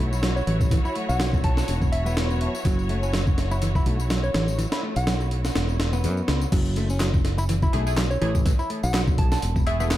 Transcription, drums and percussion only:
0.13 tambourine medium
0.23 snare loud
0.23 closed hi-hat medium
0.23 tambourine soft
0.37 tambourine soft
0.47 closed hi-hat medium
0.61 kick medium
0.61 tambourine medium
0.71 kick loud
0.71 closed hi-hat medium
0.71 tambourine soft
0.85 tambourine soft
0.96 closed hi-hat medium
1.09 tambourine medium
1.20 snare loud
1.20 closed hi-hat medium
1.20 tambourine soft
1.33 kick medium
1.33 tambourine soft
1.44 kick medium
1.44 closed hi-hat medium
1.57 snare medium
1.57 tambourine medium
1.68 closed hi-hat medium
1.68 tambourine medium
1.82 kick medium
1.82 tambourine soft
1.93 closed hi-hat medium
2.06 tambourine medium
2.17 snare loud
2.17 closed hi-hat medium
2.17 tambourine soft
2.30 tambourine soft
2.41 closed hi-hat medium
2.55 tambourine medium
2.65 kick loud
2.65 closed hi-hat medium
2.65 tambourine medium
2.79 tambourine soft
2.89 closed hi-hat medium
3.03 tambourine medium
3.13 snare loud
3.13 closed hi-hat medium
3.13 tambourine soft
3.27 kick medium
3.27 tambourine soft
3.38 snare soft
3.38 closed hi-hat medium
3.51 tambourine medium
3.62 closed hi-hat medium
3.62 tambourine medium
3.75 kick medium
3.75 tambourine soft
3.86 closed hi-hat medium
4.00 tambourine medium
4.10 snare loud
4.10 closed hi-hat medium
4.10 tambourine soft
4.24 tambourine soft
4.34 snare loud
4.34 closed hi-hat medium
4.48 tambourine medium
4.59 closed hi-hat medium
4.59 tambourine medium
4.72 snare loud
4.72 closed hi-hat medium
4.72 tambourine soft
4.96 closed hi-hat medium
4.96 tambourine medium
5.07 snare loud
5.07 closed hi-hat medium
5.07 tambourine medium
5.20 tambourine soft
5.31 closed hi-hat medium
5.45 snare medium
5.45 tambourine medium
5.55 snare loud
5.55 closed hi-hat medium
5.55 tambourine medium
5.69 tambourine soft
5.80 snare loud
5.80 closed hi-hat medium
5.93 tambourine medium
6.04 closed hi-hat medium
6.04 tambourine medium
6.17 tambourine soft
6.28 snare loud
6.28 closed hi-hat medium
6.41 tambourine medium
6.52 kick loud
6.52 closed hi-hat medium
6.52 crash medium
6.52 tambourine medium
6.66 tambourine soft
6.76 closed hi-hat medium
6.90 tambourine medium
7.00 snare loud
7.00 clap loud
7.00 closed hi-hat medium
7.00 tambourine medium
7.14 kick loud
7.14 tambourine soft
7.25 snare soft
7.25 closed hi-hat medium
7.38 tambourine medium
7.49 closed hi-hat medium
7.49 tambourine medium
7.62 kick medium
7.62 tambourine soft
7.73 closed hi-hat medium
7.87 tambourine medium
7.97 snare loud
7.97 clap loud
7.97 closed hi-hat medium
7.97 tambourine medium
8.11 tambourine soft
8.22 closed hi-hat medium
8.35 kick loud
8.35 tambourine medium
8.46 kick loud
8.46 closed hi-hat medium
8.46 tambourine medium
8.59 tambourine soft
8.70 closed hi-hat medium
8.83 tambourine medium
8.94 snare loud
8.94 clap loud
8.94 closed hi-hat medium
8.94 tambourine medium
9.07 kick loud
9.07 tambourine soft
9.18 kick loud
9.18 closed hi-hat medium
9.32 snare medium
9.32 tambourine medium
9.42 closed hi-hat medium
9.42 tambourine medium
9.56 kick medium
9.56 tambourine soft
9.67 closed hi-hat medium
9.80 tambourine medium
9.91 snare loud
9.91 clap loud
9.91 closed hi-hat medium
9.91 tambourine medium

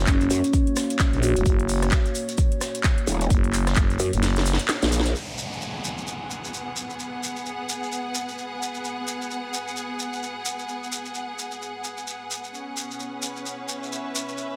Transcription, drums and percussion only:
0.07 kick loud
0.07 snare loud
0.07 clap loud
0.07 closed hi-hat medium
0.07 shekere soft
0.07 shaker loud
0.21 closed hi-hat soft
0.21 shekere soft
0.30 open hi-hat medium
0.30 shaker medium
0.30 shekere loud
0.44 closed hi-hat medium
0.44 shekere soft
0.53 kick loud
0.53 closed hi-hat medium
0.53 shekere medium
0.53 shaker medium
0.67 closed hi-hat soft
0.76 cross-stick medium
0.76 snare soft
0.76 open hi-hat loud
0.76 shekere medium
0.76 shaker medium
0.90 closed hi-hat medium
0.90 shekere soft
0.99 kick loud
0.99 snare loud
0.99 clap loud
0.99 closed hi-hat medium
0.99 shekere medium
0.99 shaker medium
1.13 closed hi-hat soft
1.23 open hi-hat loud
1.23 shaker medium
1.23 shekere medium
1.36 closed hi-hat medium
1.36 shekere soft
1.46 kick loud
1.46 closed hi-hat medium
1.46 shaker medium
1.46 shekere soft
1.60 closed hi-hat soft
1.69 open hi-hat medium
1.69 open hi-hat loud
1.69 shekere medium
1.82 cross-stick medium
1.82 closed hi-hat medium
1.82 shekere soft
1.91 kick loud
1.91 snare loud
1.91 clap loud
1.91 closed hi-hat medium
1.91 shaker medium
1.91 shekere medium
2.06 closed hi-hat soft
2.06 shekere soft
2.15 open hi-hat medium
2.15 shekere medium
2.15 shaker medium
2.29 closed hi-hat medium
2.29 shekere soft
2.38 kick loud
2.38 closed hi-hat medium
2.38 shaker loud
2.38 shekere soft
2.52 closed hi-hat soft
2.61 cross-stick medium
2.61 snare soft
2.61 open hi-hat loud
2.61 shekere medium
2.61 shaker medium
2.75 closed hi-hat medium
2.75 shekere soft
2.84 kick loud
2.84 snare loud
2.84 clap loud
2.84 closed hi-hat medium
2.84 shekere medium
2.84 shaker medium
2.98 closed hi-hat soft
3.07 open hi-hat medium
3.07 shekere medium
3.07 shaker medium
3.21 closed hi-hat medium
3.21 shekere soft
3.30 kick loud
3.30 closed hi-hat medium
3.30 shaker loud
3.30 shekere medium
3.44 closed hi-hat soft
3.53 clap soft
3.53 open hi-hat loud
3.53 shekere loud
3.53 shaker medium
3.67 cross-stick medium
3.67 snare medium
3.67 closed hi-hat medium
3.67 shekere soft
3.76 kick loud
3.76 snare loud
3.76 clap loud
3.76 closed hi-hat medium
3.76 shaker loud
3.76 shekere medium
3.90 closed hi-hat soft
3.90 shekere soft
3.99 open hi-hat medium
3.99 shekere medium
3.99 shaker medium
4.13 closed hi-hat medium
4.13 shekere soft
4.23 snare medium
4.23 closed hi-hat medium
4.23 shekere medium
4.23 shaker loud
4.36 snare medium
4.36 closed hi-hat soft
4.36 shekere soft
4.45 snare soft
4.45 open hi-hat loud
4.45 shaker medium
4.45 shekere medium
4.53 snare medium
4.59 closed hi-hat medium
4.59 shekere soft
4.68 snare medium
4.68 snare loud
4.68 clap loud
4.68 closed hi-hat medium
4.68 shekere soft
4.68 shaker medium
4.82 snare loud
4.82 closed hi-hat soft
4.82 shekere soft
4.82 shaker medium
4.84 snare loud
4.92 snare loud
4.92 open hi-hat medium
4.92 shaker medium
4.92 shekere medium
5.00 snare loud
5.05 snare loud
5.05 closed hi-hat medium
5.05 shaker medium
5.05 shekere soft
5.15 shekere soft
5.38 shekere medium
5.52 shekere soft
5.61 shekere soft
5.84 shekere medium
5.98 shekere soft
6.07 shekere soft
6.30 shekere medium
6.44 shekere soft
6.54 shekere soft
6.76 shekere medium
6.90 shekere soft
6.99 shekere soft
7.23 shekere medium
7.36 shekere soft
7.46 shekere soft
7.69 shekere medium
7.83 shekere soft
7.92 shekere medium
8.15 shekere medium
8.29 shekere soft
8.38 shekere soft
8.62 shekere loud
8.75 shekere soft
8.84 shekere medium
9.07 shekere medium
9.22 shekere soft
9.31 shekere soft
9.54 shekere medium
9.68 shekere soft
9.76 shekere medium
9.99 shekere medium
10.13 shekere soft
10.23 shekere medium
10.45 shekere medium
10.59 shekere soft
10.68 shekere soft
10.83 shekere soft
10.92 shekere medium
11.05 shekere soft
11.14 shekere soft
11.39 shekere medium
11.52 shekere soft
11.62 shekere soft
11.84 shekere medium
11.98 shekere soft
12.07 shekere soft
12.31 shekere medium
12.44 shekere soft
12.54 shekere soft
12.77 shekere medium
12.91 shekere soft
13.00 shekere soft
13.22 shekere medium
13.36 shekere soft
13.46 shekere medium
13.69 shekere medium
13.83 shekere soft
13.92 shekere medium
14.15 shekere loud
14.29 shekere soft
14.38 shekere soft

